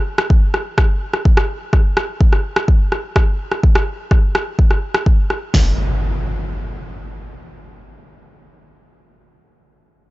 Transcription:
0.18 cross-stick medium
0.30 kick loud
0.54 cross-stick medium
0.78 kick loud
0.78 cross-stick medium
1.14 cross-stick medium
1.25 kick loud
1.37 cross-stick medium
1.73 kick loud
1.73 cross-stick soft
1.97 cross-stick medium
2.21 kick loud
2.33 cross-stick soft
2.56 cross-stick medium
2.68 kick loud
2.92 cross-stick soft
3.16 kick loud
3.16 cross-stick medium
3.52 cross-stick soft
3.63 kick loud
3.75 cross-stick medium
4.11 kick loud
4.11 cross-stick soft
4.35 cross-stick medium
4.59 kick loud
4.71 cross-stick soft
4.94 cross-stick medium
5.06 kick loud
5.30 cross-stick soft
5.54 kick medium
5.54 snare medium
5.54 open hi-hat medium
5.54 impact medium

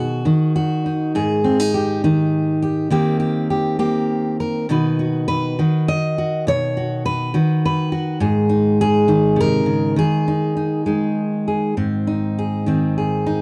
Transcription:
0.00 0.27 B2 medium
0.00 0.24 D#3 medium
0.00 0.25 D#4 soft
0.00 0.54 F#4 medium
0.25 2.02 D#3 medium
0.25 0.85 D#4 soft
0.56 1.15 F#4 medium
0.86 1.44 D#4 soft
1.15 2.87 G#2 medium
1.15 1.74 G#4 medium
1.44 1.60 C4 medium
1.60 2.03 D#4 soft
1.74 2.61 G4 medium
2.04 2.89 D#3 medium
2.04 2.92 D#4 medium
2.62 2.88 G4 medium
2.90 4.68 D#3 medium
2.90 3.78 A#3 medium
2.90 4.70 C4 medium
2.90 3.19 G4 medium
3.20 3.49 G4 medium
3.50 3.78 G4 medium
3.79 4.65 A#3 medium
3.79 4.39 G4 medium
4.40 4.66 A#4 medium
4.69 5.59 B2 medium
4.69 5.58 D#3 soft
4.69 6.51 D#4 soft
4.69 4.99 F#4 soft
4.69 5.27 B4 soft
4.99 5.59 F#4 soft
5.28 5.88 B4 medium
5.59 7.33 D#3 medium
5.59 6.17 F#4 soft
5.88 6.47 D#5 medium
6.18 6.44 F#4 soft
6.47 7.35 B2 medium
6.47 7.05 C#5 medium
6.77 7.33 F#4 soft
7.06 7.64 B4 medium
7.34 9.07 D#3 medium
7.34 7.91 F#4 soft
7.65 8.21 B4 medium
7.92 8.18 F#4 soft
8.20 9.94 G#2 medium
8.20 8.81 G#4 soft
8.49 9.08 D#4 soft
8.81 9.40 G#4 medium
9.08 9.95 D#3 medium
9.08 10.27 D#4 soft
9.36 9.66 C3 medium
9.40 9.98 A#4 loud
9.66 9.97 C#3 medium
9.96 12.65 D#3 medium
9.96 11.46 G#4 medium
10.28 10.55 D#4 soft
10.57 10.86 D#4 soft
10.86 11.77 G#3 medium
10.86 11.73 D#4 soft
11.48 11.74 G#4 soft
11.77 13.42 G#2 soft
11.77 12.67 C4 soft
12.07 13.25 D#4 soft
12.39 12.97 G#4 soft
12.66 13.42 D#3 soft
12.66 13.42 C4 soft
12.98 13.42 G#4 soft
13.26 13.42 D#4 soft

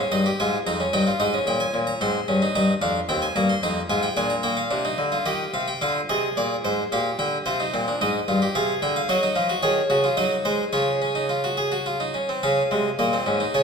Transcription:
0.00 0.11 C#4 medium
0.12 0.29 G2 medium
0.12 0.25 D#4 medium
0.12 0.28 D#5 medium
0.26 0.39 G4 medium
0.40 0.57 G#2 medium
0.40 0.56 F4 medium
0.40 0.56 G#5 medium
0.67 0.83 F2 medium
0.67 0.80 D#4 medium
0.67 0.83 A#5 medium
0.80 0.93 C#4 medium
0.93 1.10 G2 medium
0.93 1.06 D#4 medium
0.93 1.10 G5 medium
1.07 1.20 F4 medium
1.20 1.37 G#2 medium
1.20 1.33 D#4 medium
1.20 1.37 D#5 medium
1.34 1.99 C#4 medium
1.47 1.64 A#2 medium
1.47 1.60 G5 medium
1.60 1.77 G#5 medium
1.74 1.91 A#2 medium
1.87 2.00 A#5 medium
2.01 2.18 G#2 medium
2.01 2.18 C4 medium
2.01 2.53 C6 medium
2.28 2.45 G2 medium
2.28 2.41 C#4 medium
2.42 2.54 D#4 medium
2.55 2.72 G2 medium
2.55 2.72 D#4 loud
2.55 2.72 A#5 medium
2.82 2.98 F2 medium
2.82 2.98 D4 medium
2.82 2.98 F5 medium
3.09 3.25 D#2 medium
3.09 3.26 C4 medium
3.09 3.22 G5 medium
3.22 3.35 G#5 medium
3.36 3.52 G2 medium
3.36 3.53 A#3 medium
3.36 3.49 A#5 medium
3.49 3.62 C6 medium
3.63 3.80 F2 medium
3.63 3.80 D#4 medium
3.63 3.80 A#5 medium
3.90 4.06 G#2 medium
3.90 4.06 F4 medium
3.90 4.03 G#5 medium
4.03 4.16 G5 medium
4.17 4.69 A#2 medium
4.17 4.33 D4 medium
4.17 4.30 G#5 medium
4.30 4.43 A#5 medium
4.43 4.60 A#3 medium
4.43 4.57 G5 medium
4.57 5.24 F5 medium
4.71 4.88 C3 medium
4.71 4.84 D4 medium
4.85 5.02 D#4 medium
4.98 5.16 D3 medium
5.12 5.26 F4 medium
5.26 5.43 D#3 medium
5.26 5.80 G4 medium
5.26 5.43 D#5 medium
5.54 5.71 C3 medium
5.54 5.67 F5 medium
5.68 5.81 G5 medium
5.81 5.99 D3 medium
5.81 5.99 F4 medium
5.81 5.99 F5 medium
6.09 6.27 C3 medium
6.09 6.90 G#4 medium
6.09 6.27 D#5 medium
6.37 6.54 A#2 medium
6.37 6.54 D5 medium
6.65 6.82 G#2 medium
6.65 6.82 C5 medium
6.92 7.09 A#2 medium
6.92 7.45 G4 medium
6.92 7.09 F5 medium
7.19 7.36 D3 medium
7.19 7.36 G5 medium
7.46 7.63 C3 medium
7.46 7.59 F4 medium
7.46 7.99 C5 medium
7.60 7.73 D#4 medium
7.74 7.91 A#2 medium
7.74 7.87 C4 medium
7.88 8.01 D4 medium
8.01 8.18 G#2 medium
8.01 8.18 D#4 medium
8.01 8.54 D#5 medium
8.28 8.45 G2 medium
8.28 8.41 F4 medium
8.42 8.55 G4 medium
8.55 8.72 C3 medium
8.55 9.08 G#4 medium
8.55 8.72 F5 medium
8.82 8.99 D3 medium
8.82 8.95 G5 medium
8.96 9.09 F5 medium
9.09 9.26 F#3 loud
9.09 9.22 F#4 medium
9.09 9.61 D#5 medium
9.23 9.36 D#4 medium
9.36 9.52 F3 medium
9.36 9.49 F4 medium
9.50 9.63 F#4 medium
9.63 9.80 D#3 medium
9.63 9.80 G#4 medium
9.63 10.15 C#5 medium
9.90 10.07 C#3 medium
9.90 10.03 F#4 medium
10.04 10.17 F4 medium
10.17 10.34 F#3 medium
10.17 10.71 D#4 medium
10.17 10.34 D#5 medium
10.45 10.63 G#3 medium
10.45 10.63 C5 medium
10.73 12.11 C#3 medium
10.73 10.91 F4 medium
10.73 12.11 C#5 medium
11.02 11.15 C#4 medium
11.15 11.29 D#4 medium
11.29 11.43 F4 medium
11.44 11.58 F#4 medium
11.57 11.72 G#4 medium
11.72 11.86 F#4 medium
11.86 12.00 F4 medium
12.00 12.14 D#4 medium
12.14 12.28 C#4 medium
12.29 12.43 C4 medium
12.43 12.61 C#3 medium
12.43 12.61 C#4 medium
12.43 12.97 F5 medium
12.71 12.88 C3 medium
12.71 12.89 G#3 medium
12.99 13.16 A#2 medium
12.99 13.12 A#3 medium
12.99 13.53 D#5 medium
13.13 13.26 C4 medium
13.26 13.44 G#2 medium
13.26 13.40 C#4 medium
13.40 13.54 D#4 medium
13.54 13.63 C#3 medium
13.54 13.63 C#4 medium
13.54 13.63 C#5 medium

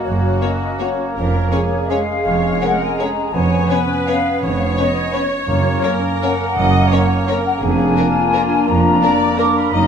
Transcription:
0.00 1.92 A#3 soft
0.00 1.12 C#4 soft
0.00 1.16 F#4 soft
0.05 0.36 F#1 soft
0.05 0.36 F#2 medium
0.05 0.42 C#5 soft
0.42 0.50 A#3 soft
0.42 0.56 A#3 soft
0.42 0.56 C#4 soft
0.42 0.50 F#4 soft
0.42 0.50 C#5 soft
0.42 0.80 D#5 medium
0.79 0.92 A#3 soft
0.79 0.88 A#3 soft
0.79 0.92 C#4 soft
0.79 0.88 F#4 soft
0.79 0.87 C#5 soft
0.79 1.15 C#5 medium
1.16 1.46 F1 soft
1.16 1.46 F2 medium
1.16 3.29 C#4 soft
1.16 1.52 A#4 soft
1.16 1.89 C#5 medium
1.51 1.66 G#3 soft
1.51 1.65 C#4 soft
1.51 1.60 C#4 soft
1.51 1.60 G#4 soft
1.51 2.26 G#4 soft
1.51 1.60 C#5 soft
1.90 3.33 G#3 soft
1.90 2.04 G#3 soft
1.90 2.04 C#4 soft
1.90 1.99 C#4 soft
1.90 1.99 G#4 soft
1.90 1.99 C#5 soft
1.90 2.62 F5 medium
2.26 2.56 F1 soft
2.26 2.56 F2 medium
2.26 2.62 C#5 soft
2.61 2.75 G#3 soft
2.61 2.70 C#4 soft
2.61 2.76 C#4 soft
2.61 2.70 G#4 soft
2.61 2.99 A#4 soft
2.61 2.70 C#5 soft
2.61 2.81 F#5 medium
2.81 2.99 G#5 medium
2.99 3.13 G#3 soft
2.99 3.08 C#4 soft
2.99 3.13 C#4 soft
2.99 3.07 G#4 soft
2.99 3.34 G#4 soft
2.99 3.07 C#5 soft
2.99 3.34 A#5 medium
3.33 3.64 F1 medium
3.33 3.64 F2 medium
3.33 5.18 B3 soft
3.33 5.18 C#4 medium
3.33 3.70 C#5 medium
3.33 4.08 G#5 medium
3.70 3.84 B3 soft
3.70 3.78 C#4 soft
3.70 3.84 C#4 soft
3.70 3.78 B4 soft
3.70 4.43 B4 medium
3.70 3.78 C#5 soft
4.07 4.21 B3 soft
4.07 4.16 C#4 soft
4.07 4.21 C#4 soft
4.07 4.16 B4 soft
4.07 4.15 C#5 soft
4.07 4.42 F5 medium
4.41 4.72 F1 medium
4.41 4.72 F2 medium
4.41 4.47 C#5 medium
4.41 5.81 C#5 medium
4.59 4.65 F5 medium
4.77 4.92 B3 soft
4.77 4.87 C#4 soft
4.77 4.92 C#4 soft
4.77 4.86 B4 soft
4.77 4.85 C#5 soft
4.77 5.13 D#5 medium
5.13 5.27 B3 soft
5.13 5.22 C#4 soft
5.13 5.26 C#4 soft
5.13 5.21 B4 soft
5.13 5.21 C#5 soft
5.13 5.46 C#5 medium
5.47 5.77 F#1 medium
5.47 5.99 F#2 soft
5.47 5.77 F#2 medium
5.47 7.59 A#3 soft
5.47 7.59 C#4 medium
5.47 6.00 C#5 medium
5.83 5.98 A#3 soft
5.83 5.92 C#4 soft
5.83 5.98 C#4 soft
5.83 5.91 A#4 soft
5.83 6.58 A#4 medium
5.83 5.91 C#5 medium
6.22 6.35 A#3 soft
6.22 6.35 C#4 soft
6.22 6.31 C#4 soft
6.22 6.31 A#4 soft
6.22 6.31 C#5 medium
6.22 7.10 F#5 medium
6.57 6.86 F#1 medium
6.57 6.87 F#2 medium
6.57 6.92 D#5 medium
6.92 7.05 A#3 soft
6.92 7.05 C#4 soft
6.92 7.00 C#4 medium
6.92 7.00 A#4 soft
6.92 7.00 C#5 medium
6.92 7.29 C#5 medium
7.28 7.42 A#3 soft
7.28 7.36 C#4 soft
7.28 7.42 C#4 soft
7.28 7.63 A#4 medium
7.28 7.37 A#4 soft
7.28 7.36 C#5 soft
7.45 7.51 F#5 medium
7.62 7.92 F1 medium
7.62 7.92 F2 medium
7.62 9.69 A#3 medium
7.62 8.64 A#3 medium
7.62 9.69 D4 medium
7.62 8.64 D4 medium
7.62 7.97 G#4 medium
7.62 8.66 G#5 medium
7.96 8.05 D4 medium
7.96 9.02 F4 medium
7.96 8.05 A#4 soft
7.96 8.05 A#4 medium
8.33 8.42 D4 medium
8.33 8.41 A#4 soft
8.33 8.42 A#4 soft
8.68 8.97 F1 medium
8.68 8.97 F2 medium
8.68 9.37 A#3 medium
8.68 9.37 D4 medium
8.68 9.39 A#5 medium
9.02 9.11 D4 medium
9.02 9.11 A#4 medium
9.02 9.11 A#4 soft
9.02 9.39 D5 medium
9.39 9.72 A#3 medium
9.39 9.47 D4 medium
9.39 9.74 D4 medium
9.39 9.47 A#4 soft
9.39 9.73 A#4 medium
9.39 9.56 D6 medium
9.56 9.73 B5 medium
9.72 9.87 F#1 medium
9.72 9.87 F#2 medium
9.72 9.87 A#3 medium
9.72 9.87 D#4 medium
9.72 9.87 D#5 medium
9.72 9.87 A#5 medium

